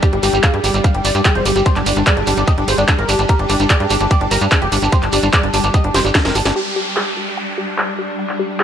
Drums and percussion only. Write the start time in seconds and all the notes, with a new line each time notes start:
0.03 kick, closed hi-hat, shekere
0.13 closed hi-hat
0.23 open hi-hat, shekere
0.34 shekere
0.43 kick, clap, closed hi-hat, shekere
0.54 closed hi-hat
0.64 open hi-hat, shekere
0.74 closed hi-hat, shekere
0.84 kick, closed hi-hat, shekere
0.94 closed hi-hat
1.05 open hi-hat, shekere
1.15 closed hi-hat, shekere
1.25 kick, clap, closed hi-hat, shekere
1.35 closed hi-hat
1.46 open hi-hat, shekere
1.56 closed hi-hat, shekere
1.66 kick, closed hi-hat, shekere
1.76 clap, closed hi-hat
1.86 open hi-hat, shekere
1.96 closed hi-hat, shekere
2.07 kick, clap, closed hi-hat, shekere
2.17 closed hi-hat
2.27 open hi-hat, shekere
2.37 closed hi-hat, shekere
2.47 kick, closed hi-hat, shekere
2.58 closed hi-hat
2.68 open hi-hat, shekere
2.78 closed hi-hat, shekere
2.88 kick, clap, closed hi-hat, shekere
2.99 closed hi-hat
3.09 open hi-hat, shekere
3.19 closed hi-hat, shekere
3.29 kick, closed hi-hat, shekere
3.39 closed hi-hat
3.49 open hi-hat, shekere
3.60 closed hi-hat, shekere
3.70 kick, clap, closed hi-hat, shekere
3.80 closed hi-hat
3.90 open hi-hat, shekere
4.00 closed hi-hat, shekere
4.10 kick, closed hi-hat, shekere
4.21 closed hi-hat
4.31 open hi-hat, shekere
4.41 closed hi-hat, shekere
4.52 kick, clap, closed hi-hat, shekere
4.62 closed hi-hat
4.72 open hi-hat, shekere
4.82 closed hi-hat, shekere
4.92 kick, closed hi-hat, shekere
5.03 clap, closed hi-hat
5.13 open hi-hat, shekere
5.23 shekere
5.33 kick, clap, closed hi-hat, shekere
5.43 closed hi-hat
5.53 open hi-hat, shekere
5.64 closed hi-hat, shekere
5.74 kick, closed hi-hat, shekere
5.84 closed hi-hat
5.94 snare, open hi-hat, shekere
6.05 shekere
6.15 kick, snare, clap, closed hi-hat, shekere
6.25 snare, closed hi-hat
6.35 open hi-hat, shekere
6.45 snare, shekere
6.97 clap
7.78 clap
8.29 clap
8.60 clap